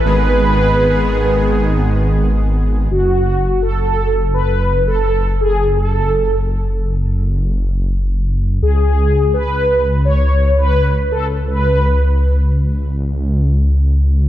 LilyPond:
<<
  \new Staff \with { instrumentName = "Analog polysynth" } { \time 4/4 \key fis \dorian \tempo 4 = 84 b'2. r4 | fis'4 a'4 b'8. a'8. gis'8 | a'4. r2 r8 | gis'4 b'4 cis''8. b'8. a'8 |
b'4. r2 r8 | }
  \new Staff \with { instrumentName = "Supersaw synth" } { \time 4/4 \key fis \dorian <dis gis b gis'>1 | r1 | r1 | r1 |
r1 | }
  \new Staff \with { instrumentName = "Detuned saw bass" } { \clef bass \time 4/4 \key fis \dorian gis,,1 | fis,,1~ | fis,,1 | cis,1~ |
cis,1 | }
>>